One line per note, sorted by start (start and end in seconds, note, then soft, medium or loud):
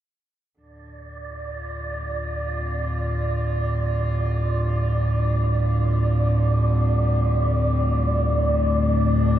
0.57 9.39 D2 medium
0.57 9.39 A2 medium
0.57 9.39 D3 medium
0.57 9.39 D5 medium
1.26 8.80 F4 medium
1.81 9.39 G3 medium
2.46 9.39 C4 medium
8.74 9.39 D4 medium